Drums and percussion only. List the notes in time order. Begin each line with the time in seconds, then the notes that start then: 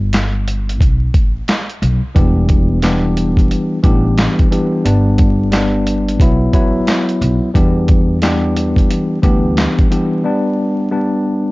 0.13 snare, clap, closed hi-hat
0.48 closed hi-hat
0.69 closed hi-hat
0.81 kick, closed hi-hat
1.14 kick, closed hi-hat
1.48 snare, clap, closed hi-hat
1.70 closed hi-hat
1.83 closed hi-hat
2.16 kick, closed hi-hat
2.49 kick, closed hi-hat
2.82 snare, clap, closed hi-hat
3.17 closed hi-hat
3.37 kick, closed hi-hat
3.51 closed hi-hat
3.84 kick, closed hi-hat
4.18 snare, clap, closed hi-hat
4.39 kick, closed hi-hat
4.52 closed hi-hat
4.86 closed hi-hat
5.18 kick, closed hi-hat
5.52 snare, clap, closed hi-hat
5.87 closed hi-hat
6.08 closed hi-hat
6.20 kick, closed hi-hat
6.53 kick, closed hi-hat
6.87 snare, clap, closed hi-hat
7.09 closed hi-hat
7.22 closed hi-hat
7.55 kick, closed hi-hat
7.88 kick, closed hi-hat
8.22 snare, clap, closed hi-hat
8.57 closed hi-hat
8.76 kick, closed hi-hat
8.91 closed hi-hat
9.23 kick, closed hi-hat
9.57 snare, clap, closed hi-hat
9.79 kick, closed hi-hat
9.92 closed hi-hat